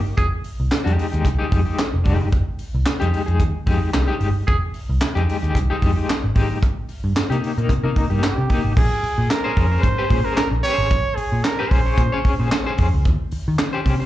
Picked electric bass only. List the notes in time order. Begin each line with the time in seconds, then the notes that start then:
0.18 F1
0.60 C2
0.72 muted picked electric bass stroke
0.86 F2
1.13 D#2
1.25 C2
1.52 F2
1.94 F1
2.05 F1
2.21 G1
2.32 F1
2.74 C2
3.02 F2
3.28 F2
3.40 D#2
3.67 F2
3.94 C2
4.21 G1
4.48 F1
4.89 C2
5.16 F2
5.43 D#2
5.55 C2
5.82 F2
6.24 G#1
6.36 G#1
6.50 A#1
6.62 C2
7.04 G2
7.15 muted picked electric bass stroke
7.30 C3
7.58 A#2
7.69 C3
7.84 C3
8.11 G2
8.38 C3
8.64 G#1
8.77 A#1
9.03 muted picked electric bass stroke
9.18 A#2
9.57 F2
9.83 G#2
10.11 A#2
10.37 muted picked electric bass stroke
10.51 A#1
10.78 G#1
10.91 A#1
11.17 muted picked electric bass stroke
11.32 A#2
11.71 A#1
11.98 A#2
12.25 muted picked electric bass stroke
12.39 A#2
12.78 F2
12.94 C#2
13.05 D#2
13.32 muted picked electric bass stroke
13.48 D#3
13.86 C3